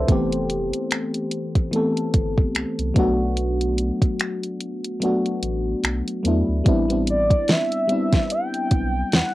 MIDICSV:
0, 0, Header, 1, 5, 480
1, 0, Start_track
1, 0, Tempo, 821918
1, 49, Time_signature, 4, 2, 24, 8
1, 5455, End_track
2, 0, Start_track
2, 0, Title_t, "Soft synth lead"
2, 0, Program_c, 0, 80
2, 4144, Note_on_c, 0, 74, 89
2, 4383, Note_on_c, 0, 76, 103
2, 4392, Note_off_c, 0, 74, 0
2, 4860, Note_on_c, 0, 79, 107
2, 4869, Note_off_c, 0, 76, 0
2, 5341, Note_on_c, 0, 78, 107
2, 5350, Note_off_c, 0, 79, 0
2, 5455, Note_off_c, 0, 78, 0
2, 5455, End_track
3, 0, Start_track
3, 0, Title_t, "FM electric piano"
3, 0, Program_c, 1, 5
3, 0, Control_c, 1, 64, 127
3, 0, Note_on_c, 1, 57, 70
3, 0, Note_on_c, 1, 62, 72
3, 0, Note_on_c, 1, 69, 53
3, 0, Note_on_c, 1, 71, 60
3, 0, Note_on_c, 1, 72, 62
3, 0, Note_on_c, 1, 76, 68
3, 42, Note_on_c, 1, 52, 85
3, 49, Note_off_c, 1, 57, 0
3, 49, Note_on_c, 1, 57, 73
3, 55, Control_c, 1, 64, 0
3, 55, Note_on_c, 1, 59, 75
3, 60, Note_off_c, 1, 62, 0
3, 60, Note_off_c, 1, 71, 0
3, 61, Note_off_c, 1, 76, 0
3, 63, Note_on_c, 1, 60, 76
3, 69, Note_on_c, 1, 67, 90
3, 165, Control_c, 1, 64, 127
3, 178, Note_off_c, 1, 72, 0
3, 180, Note_off_c, 1, 69, 0
3, 831, Note_off_c, 1, 52, 0
3, 834, Note_off_c, 1, 57, 0
3, 838, Note_off_c, 1, 59, 0
3, 841, Note_off_c, 1, 60, 0
3, 844, Note_off_c, 1, 67, 0
3, 1000, Note_on_c, 1, 52, 77
3, 1006, Note_on_c, 1, 57, 70
3, 1012, Note_on_c, 1, 59, 71
3, 1020, Note_on_c, 1, 60, 73
3, 1027, Note_on_c, 1, 69, 82
3, 1603, Note_off_c, 1, 52, 0
3, 1606, Note_off_c, 1, 57, 0
3, 1609, Note_off_c, 1, 59, 0
3, 1613, Note_off_c, 1, 60, 0
3, 1617, Note_off_c, 1, 69, 0
3, 1718, Note_on_c, 1, 54, 90
3, 1725, Note_on_c, 1, 57, 82
3, 1732, Note_on_c, 1, 59, 83
3, 1736, Control_c, 1, 64, 0
3, 1738, Note_on_c, 1, 62, 78
3, 1746, Note_on_c, 1, 66, 99
3, 1835, Control_c, 1, 64, 127
3, 2509, Note_off_c, 1, 54, 0
3, 2512, Note_off_c, 1, 57, 0
3, 2516, Note_off_c, 1, 59, 0
3, 2519, Note_off_c, 1, 62, 0
3, 2523, Note_off_c, 1, 66, 0
3, 2920, Note_on_c, 1, 54, 78
3, 2926, Note_on_c, 1, 57, 70
3, 2934, Note_on_c, 1, 59, 75
3, 2940, Note_on_c, 1, 62, 71
3, 2947, Note_on_c, 1, 66, 87
3, 3523, Note_off_c, 1, 54, 0
3, 3526, Note_off_c, 1, 57, 0
3, 3530, Note_off_c, 1, 59, 0
3, 3533, Note_off_c, 1, 62, 0
3, 3537, Note_off_c, 1, 66, 0
3, 3638, Note_on_c, 1, 54, 71
3, 3645, Note_on_c, 1, 57, 67
3, 3652, Note_on_c, 1, 59, 69
3, 3660, Note_on_c, 1, 62, 69
3, 3666, Note_on_c, 1, 64, 83
3, 3845, Note_off_c, 1, 54, 0
3, 3848, Note_off_c, 1, 57, 0
3, 3852, Note_off_c, 1, 59, 0
3, 3856, Note_off_c, 1, 62, 0
3, 3859, Note_off_c, 1, 64, 0
3, 3878, Note_on_c, 1, 55, 89
3, 3884, Note_on_c, 1, 59, 78
3, 3891, Note_on_c, 1, 60, 75
3, 3896, Control_c, 1, 64, 0
3, 3897, Note_on_c, 1, 62, 80
3, 3905, Note_on_c, 1, 64, 98
3, 3996, Note_off_c, 1, 55, 0
3, 3999, Note_off_c, 1, 59, 0
3, 4003, Note_off_c, 1, 60, 0
3, 4006, Note_off_c, 1, 62, 0
3, 4008, Control_c, 1, 64, 127
3, 4010, Note_off_c, 1, 64, 0
3, 4019, Note_on_c, 1, 55, 69
3, 4025, Note_on_c, 1, 59, 63
3, 4032, Note_on_c, 1, 60, 63
3, 4039, Note_on_c, 1, 62, 67
3, 4046, Note_on_c, 1, 64, 73
3, 4508, Note_off_c, 1, 55, 0
3, 4511, Note_off_c, 1, 59, 0
3, 4514, Note_off_c, 1, 60, 0
3, 4518, Note_off_c, 1, 62, 0
3, 4521, Note_off_c, 1, 64, 0
3, 4598, Note_on_c, 1, 55, 76
3, 4605, Note_on_c, 1, 59, 70
3, 4612, Note_on_c, 1, 60, 69
3, 4619, Note_on_c, 1, 62, 70
3, 4625, Note_on_c, 1, 64, 82
3, 5389, Note_off_c, 1, 55, 0
3, 5393, Note_off_c, 1, 59, 0
3, 5396, Note_off_c, 1, 60, 0
3, 5399, Note_off_c, 1, 62, 0
3, 5402, Note_off_c, 1, 64, 0
3, 5455, End_track
4, 0, Start_track
4, 0, Title_t, "Sub bass"
4, 0, Program_c, 2, 38
4, 49, Note_on_c, 2, 29, 98
4, 418, Note_off_c, 2, 29, 0
4, 1251, Note_on_c, 2, 31, 91
4, 1435, Note_off_c, 2, 31, 0
4, 1488, Note_on_c, 2, 36, 47
4, 1544, Note_off_c, 2, 36, 0
4, 1628, Note_on_c, 2, 36, 92
4, 1706, Note_off_c, 2, 36, 0
4, 1729, Note_on_c, 2, 35, 101
4, 2283, Note_off_c, 2, 35, 0
4, 3168, Note_on_c, 2, 33, 94
4, 3353, Note_off_c, 2, 33, 0
4, 3408, Note_on_c, 2, 35, 96
4, 3516, Note_off_c, 2, 35, 0
4, 3648, Note_on_c, 2, 40, 91
4, 3756, Note_off_c, 2, 40, 0
4, 3787, Note_on_c, 2, 38, 83
4, 3865, Note_off_c, 2, 38, 0
4, 3889, Note_on_c, 2, 33, 107
4, 4259, Note_off_c, 2, 33, 0
4, 5090, Note_on_c, 2, 35, 94
4, 5274, Note_off_c, 2, 35, 0
4, 5331, Note_on_c, 2, 40, 51
4, 5386, Note_off_c, 2, 40, 0
4, 5455, End_track
5, 0, Start_track
5, 0, Title_t, "Drums"
5, 49, Note_on_c, 9, 36, 112
5, 49, Note_on_c, 9, 42, 68
5, 108, Note_off_c, 9, 36, 0
5, 108, Note_off_c, 9, 42, 0
5, 189, Note_on_c, 9, 42, 52
5, 248, Note_off_c, 9, 42, 0
5, 290, Note_on_c, 9, 42, 70
5, 348, Note_off_c, 9, 42, 0
5, 428, Note_on_c, 9, 42, 57
5, 487, Note_off_c, 9, 42, 0
5, 530, Note_on_c, 9, 42, 60
5, 537, Note_on_c, 9, 26, 110
5, 588, Note_off_c, 9, 42, 0
5, 595, Note_off_c, 9, 26, 0
5, 668, Note_on_c, 9, 42, 50
5, 726, Note_off_c, 9, 42, 0
5, 767, Note_on_c, 9, 42, 68
5, 826, Note_off_c, 9, 42, 0
5, 907, Note_on_c, 9, 36, 87
5, 907, Note_on_c, 9, 42, 59
5, 965, Note_off_c, 9, 36, 0
5, 966, Note_off_c, 9, 42, 0
5, 1010, Note_on_c, 9, 42, 63
5, 1069, Note_off_c, 9, 42, 0
5, 1151, Note_on_c, 9, 42, 47
5, 1209, Note_off_c, 9, 42, 0
5, 1249, Note_on_c, 9, 42, 71
5, 1250, Note_on_c, 9, 36, 90
5, 1307, Note_off_c, 9, 42, 0
5, 1308, Note_off_c, 9, 36, 0
5, 1388, Note_on_c, 9, 36, 89
5, 1446, Note_off_c, 9, 36, 0
5, 1489, Note_on_c, 9, 42, 55
5, 1495, Note_on_c, 9, 26, 113
5, 1547, Note_off_c, 9, 42, 0
5, 1554, Note_off_c, 9, 26, 0
5, 1628, Note_on_c, 9, 42, 50
5, 1687, Note_off_c, 9, 42, 0
5, 1728, Note_on_c, 9, 36, 100
5, 1728, Note_on_c, 9, 42, 62
5, 1786, Note_off_c, 9, 42, 0
5, 1787, Note_off_c, 9, 36, 0
5, 1968, Note_on_c, 9, 42, 69
5, 2026, Note_off_c, 9, 42, 0
5, 2108, Note_on_c, 9, 42, 51
5, 2167, Note_off_c, 9, 42, 0
5, 2208, Note_on_c, 9, 42, 65
5, 2266, Note_off_c, 9, 42, 0
5, 2346, Note_on_c, 9, 36, 99
5, 2347, Note_on_c, 9, 42, 58
5, 2404, Note_off_c, 9, 36, 0
5, 2406, Note_off_c, 9, 42, 0
5, 2450, Note_on_c, 9, 42, 64
5, 2458, Note_on_c, 9, 26, 108
5, 2509, Note_off_c, 9, 42, 0
5, 2516, Note_off_c, 9, 26, 0
5, 2590, Note_on_c, 9, 42, 46
5, 2648, Note_off_c, 9, 42, 0
5, 2689, Note_on_c, 9, 42, 66
5, 2748, Note_off_c, 9, 42, 0
5, 2829, Note_on_c, 9, 42, 58
5, 2887, Note_off_c, 9, 42, 0
5, 2930, Note_on_c, 9, 42, 65
5, 2988, Note_off_c, 9, 42, 0
5, 3070, Note_on_c, 9, 42, 44
5, 3128, Note_off_c, 9, 42, 0
5, 3168, Note_on_c, 9, 42, 71
5, 3227, Note_off_c, 9, 42, 0
5, 3408, Note_on_c, 9, 42, 55
5, 3414, Note_on_c, 9, 26, 112
5, 3466, Note_off_c, 9, 42, 0
5, 3473, Note_off_c, 9, 26, 0
5, 3549, Note_on_c, 9, 42, 49
5, 3607, Note_off_c, 9, 42, 0
5, 3650, Note_on_c, 9, 42, 62
5, 3708, Note_off_c, 9, 42, 0
5, 3888, Note_on_c, 9, 42, 73
5, 3889, Note_on_c, 9, 36, 116
5, 3947, Note_off_c, 9, 36, 0
5, 3947, Note_off_c, 9, 42, 0
5, 4029, Note_on_c, 9, 42, 53
5, 4088, Note_off_c, 9, 42, 0
5, 4130, Note_on_c, 9, 42, 71
5, 4188, Note_off_c, 9, 42, 0
5, 4266, Note_on_c, 9, 36, 98
5, 4268, Note_on_c, 9, 42, 58
5, 4324, Note_off_c, 9, 36, 0
5, 4326, Note_off_c, 9, 42, 0
5, 4368, Note_on_c, 9, 42, 57
5, 4376, Note_on_c, 9, 38, 110
5, 4427, Note_off_c, 9, 42, 0
5, 4434, Note_off_c, 9, 38, 0
5, 4508, Note_on_c, 9, 42, 47
5, 4566, Note_off_c, 9, 42, 0
5, 4609, Note_on_c, 9, 42, 66
5, 4668, Note_off_c, 9, 42, 0
5, 4746, Note_on_c, 9, 42, 58
5, 4747, Note_on_c, 9, 36, 96
5, 4752, Note_on_c, 9, 38, 66
5, 4805, Note_off_c, 9, 36, 0
5, 4805, Note_off_c, 9, 42, 0
5, 4811, Note_off_c, 9, 38, 0
5, 4849, Note_on_c, 9, 42, 67
5, 4907, Note_off_c, 9, 42, 0
5, 4988, Note_on_c, 9, 42, 44
5, 5047, Note_off_c, 9, 42, 0
5, 5088, Note_on_c, 9, 42, 65
5, 5089, Note_on_c, 9, 36, 87
5, 5146, Note_off_c, 9, 42, 0
5, 5148, Note_off_c, 9, 36, 0
5, 5328, Note_on_c, 9, 42, 59
5, 5335, Note_on_c, 9, 38, 116
5, 5387, Note_off_c, 9, 42, 0
5, 5393, Note_off_c, 9, 38, 0
5, 5455, End_track
0, 0, End_of_file